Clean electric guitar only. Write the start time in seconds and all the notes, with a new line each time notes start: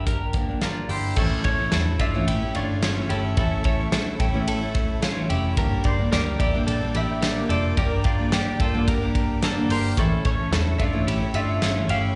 0.07 G4 A#4
0.62 D4 F4
0.89 E4 G4
1.17 E4 A4
1.45 A4 C#5
1.72 E4 A4
2.00 D4 F4
2.27 E4 G4
2.55 D4 F4
2.83 C#4 F4
3.09 E4 G4
3.37 E4 A4
3.65 A4 C#5
3.93 E4 A4
4.20 E4 G4
4.48 E4 A4
5.02 C#4 F4
5.30 E4 G4
5.58 G4 A#4
5.85 A#4 D5
6.12 G4 A#4
6.40 E4 G4
6.67 D4 A4
6.95 E4 G4
7.22 D4 G4
7.49 F4 A4
7.78 G4 A#4
8.05 D4 F4
8.33 D4 G4
8.61 F4 A4
8.88 G4 A#4
9.44 D4 A4
9.72 G4 A#4
9.99 E4 A4
10.26 A4 C#5
10.53 E4 A4
10.81 D4 F4
11.07 E4 G4
11.35 D4 F4
11.62 C#4 F4
11.90 E4 G4